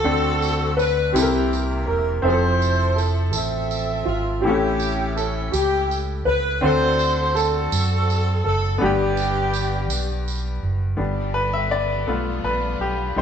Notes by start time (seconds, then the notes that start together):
Already playing: C4 F#4 A4
0.04 D2 D3 C4 D4 F#4 A4
0.42 tambourine
0.77 B4, tambourine
1.12 C2 C3 C4 E4 G4 A4, tambourine
1.17 A#3 E4 G4
1.22 A#4
1.53 tambourine
1.86 E1 A#4
1.90 A#4
2.22 F1 F3 C4 C5 E5
2.27 E4 G#4 A4 C5
2.33 A4
2.62 tambourine
2.96 A4, tambourine
3.00 A4
3.31 A1 A4, tambourine
3.36 C4 A4 E5
3.71 tambourine
4.05 G#1 F4
4.41 A1 A2 C4 E4 G4
4.45 C#4 E4 G4 A4
4.80 tambourine
5.16 A4, tambourine
5.52 C#2 G4, tambourine
5.91 tambourine
6.25 C#2 B4
6.61 D2 D3 C4 D4 F#4 A4 C5
6.99 tambourine
7.35 C4 F#4 A4, tambourine
7.72 F#2, tambourine
8.10 tambourine
8.44 F#1 A4
8.78 G1 G2 B3 D4 G4 F#5
8.83 B3 D4 G4
9.17 tambourine
9.54 tambourine
9.90 B1, tambourine
10.28 tambourine
10.63 F#1
10.97 G1 G3 B3 D4 G4
11.34 B4
11.53 E5
11.71 D5
12.07 B1 A3 B3 D4 F4
12.44 A#1 B4
12.79 B1 G4
13.16 C2 G3 C4 D#4 G4 C5